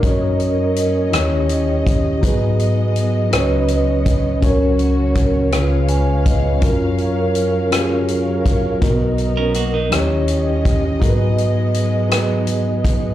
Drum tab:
HH |xxxxxx|xxxxxx|xxxxxx|xxxxxx|
SD |---r--|---r--|---r--|---r--|
BD |o----o|o----o|o-o--o|o----o|

HH |xxxxxx|xxxxxx|
SD |---r--|---r--|
BD |o----o|o----o|